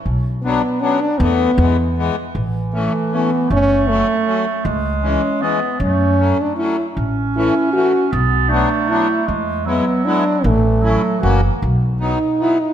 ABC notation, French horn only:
X:1
M:3/4
L:1/16
Q:"Swing" 1/4=156
K:A
V:1 name="French horn"
z4 B,4 C2 D2 | B,8- B,2 z2 | z4 A,4 B,4 | C4 A,6 z2 |
z4 C4 B,4 | C6 D2 E3 z | z4 E4 F4 | z4 D4 E4 |
z4 B,4 D4 | A,8 z4 | [K:B] z4 D4 E2 D2 |]